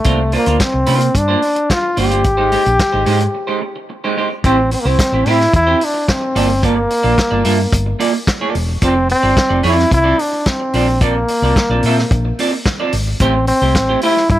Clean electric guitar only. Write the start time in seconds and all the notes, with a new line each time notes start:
0.04 A#3 D4 F4 C5
0.32 A#3 D4 F4 C5
0.47 A#3 D4 F4 C5
0.72 muted clean electric guitar stroke
0.86 A#3 D4 F4 C5
1.00 muted clean electric guitar stroke
1.14 muted clean electric guitar stroke
1.28 A#3 D4 F4 C5
1.42 muted clean electric guitar stroke
1.56 muted clean electric guitar stroke
1.70 muted clean electric guitar stroke
1.83 muted clean electric guitar stroke
1.97 A#3 D4 F4 C5
2.11 A#3 D4 F4 C5
2.24 muted clean electric guitar stroke
2.37 G#3 D#4 G4 C5
2.52 G#3 D#4 G4 C5
2.65 muted clean electric guitar stroke
2.79 muted clean electric guitar stroke
2.92 G#3 D#4 G4 C5
3.06 G#3 D#4 G4 C5
3.21 muted clean electric guitar stroke
3.34 muted clean electric guitar stroke
3.47 G#3 D#4 G4 C5
3.61 muted clean electric guitar stroke
3.76 muted clean electric guitar stroke
3.89 muted clean electric guitar stroke
4.04 G#3 D#4 G4 C5
4.17 G#3 D#4 G4 C5
4.31 muted clean electric guitar stroke
4.44 C4 E4 G4 C5
4.58 muted clean electric guitar stroke
4.72 muted clean electric guitar stroke
4.85 C4 E4 G4 C5
4.99 muted clean electric guitar stroke
5.13 C4 E4 G4 C5
5.27 C4 E4 G4 C5
5.40 muted clean electric guitar stroke
5.54 muted clean electric guitar stroke
5.67 C4 E4 G4 C5
5.80 muted clean electric guitar stroke
5.94 muted clean electric guitar stroke
6.09 muted clean electric guitar stroke
6.21 muted clean electric guitar stroke
6.35 A#3 F4 A4 D5
6.49 muted clean electric guitar stroke
6.63 A#3 F4 A4 D5
6.76 muted clean electric guitar stroke
6.90 muted clean electric guitar stroke
7.03 A#3 F4 A4 D5
7.17 muted clean electric guitar stroke
7.31 A#3 F4 A4 D5
7.44 A#3 F4 A4 E5
7.58 muted clean electric guitar stroke
7.73 muted clean electric guitar stroke
7.86 muted clean electric guitar stroke
7.99 A#3 F4 A4 D5
8.13 muted clean electric guitar stroke
8.27 muted clean electric guitar stroke
8.41 A#3 F4 A4 D5
8.55 muted clean electric guitar stroke
8.69 muted clean electric guitar stroke
8.82 C4 F4 A4 D5
8.96 muted clean electric guitar stroke
9.09 muted clean electric guitar stroke
9.23 C4 F4 A4 D5
9.35 muted clean electric guitar stroke
9.49 C4 F4 A4 D5
9.63 C4 F4 A4 D5
9.77 muted clean electric guitar stroke
9.90 muted clean electric guitar stroke
10.04 C4 F4 A4 D5
10.18 muted clean electric guitar stroke
10.32 muted clean electric guitar stroke
10.47 muted clean electric guitar stroke
10.60 muted clean electric guitar stroke
10.74 C4 F4 A4 D5
10.88 muted clean electric guitar stroke
11.01 C4 F4 A4 D5
11.15 muted clean electric guitar stroke
11.30 muted clean electric guitar stroke
11.43 C4 F4 A4 D5
11.57 muted clean electric guitar stroke
11.70 C4 F4 A4 D5
11.85 C4 F4 A4 E5
11.98 muted clean electric guitar stroke
12.12 muted clean electric guitar stroke
12.25 muted clean electric guitar stroke
12.39 C4 F4 A4 D5
12.52 muted clean electric guitar stroke
12.66 muted clean electric guitar stroke
12.80 C4 F4 A4 D5
12.93 muted clean electric guitar stroke
13.07 muted clean electric guitar stroke
13.21 A3 E4 G4 C5
13.35 muted clean electric guitar stroke
13.49 muted clean electric guitar stroke
13.62 A3 E4 G4 C5
13.89 A3 E4 G4 C5
14.03 A3 E4 G4 C5
14.16 muted clean electric guitar stroke
14.31 muted clean electric guitar stroke